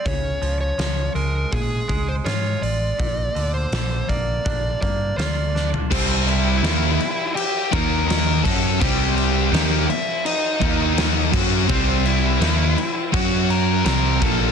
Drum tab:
CC |----------------|----------------|x-x-x-x-x-x-x-x-|x-x-x-x-x-x-x-x-|
HH |o-o-o-o-o-o-o-o-|o-o-o-o-o-o-o---|----------------|----------------|
SD |----o-------o---|----o-------o-o-|----o-------o---|----o-------o---|
FT |----------------|---------------o|----------------|----------------|
BD |o-------o-o-----|o-----o-o-o-----|o---------o---o-|o---------o---o-|

CC |x-x-x-x-x-x-x-x-|
HH |----------------|
SD |----o-------o---|
FT |----------------|
BD |o-------o-----o-|